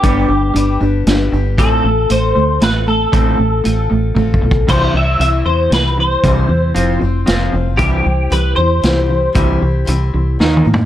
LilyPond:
<<
  \new Staff \with { instrumentName = "Clean electric guitar" } { \time 3/4 \key c \lydian \tempo 4 = 116 g'4. r4. | a'4 c''4 b'8 a'8~ | a'4. r4. | c''8 e''8 e''8 c''8 b'8 c''8~ |
c''2~ c''8 r8 | g'4 b'8 c''4.~ | c''2 r4 | }
  \new Staff \with { instrumentName = "Steel-string acoustic guitar" } { \time 3/4 \key c \lydian <g, d g b d' g'>4 <g b d' g'>8 <g b d' g'>8 <g b d' g'>8 <g b d' g'>8 | <a c' f' a'>4 <a c' f' a'>4 <a c' f' a'>8 <c' f' a'>8 | <a c' f' a'>4 <a c' f' a'>4 <a c' f' a'>4 | <c g c' e' c''>4 <g c' e' c''>4 <g c' e' c''>4 |
<c g c' e' c''>4 <f c' f' c''>8 <c' f' c''>8 <f c' f' c''>4 | <c c' e' g' c''>4 <c' e' g' c''>8 <e' g' c''>8 <c' e' g' c''>4 | <c c' e' g' c''>4 <c' e' g' c''>4 <ees bes ees' bes'>8 <bes ees' bes'>8 | }
  \new Staff \with { instrumentName = "Clean electric guitar" } { \clef bass \time 3/4 \key c \lydian <g b d'>8 <g d'>8 <g d'>8 <g d'>8 <g d'>8 <g d'>8 | <a, a c'>8 <a, a>8 <a, a>8 <a, a>8 <a, a>8 <a, a>8 | <a, a c'>8 <a, a>8 <a, a>8 <a, a>8 <a, a>8 <a, a>8 | <c e g>8 <c e>8 <c e>8 <c e>8 <c e>8 <c e>8 |
<c e g>8 <c e>8 <f c' f'>8 <f c'>8 <f c' f'>8 <f c'>8 | <c e g>8 <c e>8 <c e>8 <c e>8 <c e>8 <c e>8 | <c e g>8 <c e>8 <c e>8 <c e>8 <ees bes ees'>8 <ees bes>8 | }
  \new Staff \with { instrumentName = "Fingered electric bass" } { \clef bass \time 3/4 \key c \lydian g,,8 g,,8 g,,8 g,,8 g,,8 g,,8 | a,,8 a,,8 a,,8 d,8 a,,4 | a,,8 a,,8 a,,8 a,,8 a,,8 b,,8 | c,8 c,8 c,8 e,8 c,4 |
c,8 e,8 f,,8 f,,8 f,,8 f,,8 | c,8 c,8 c,8 e,8 c,4 | c,8 c,8 c,8 c,8 ees,8 a,8 | }
  \new DrumStaff \with { instrumentName = "Drums" } \drummode { \time 3/4 <hh bd>4 hh4 <hh sn>4 | <hh bd>4 hh4 <hh sn>4 | <hh bd>4 hh4 \tuplet 3/2 { bd8 bd8 bd8 } | <cymc hh bd>4 hh4 <hh sn>4 |
<hh bd>4 hh4 <hh sn>4 | <hh bd>4 hh4 <hh sn>4 | <hh bd>4 hh4 \tuplet 3/2 { sn8 toml8 tomfh8 } | }
>>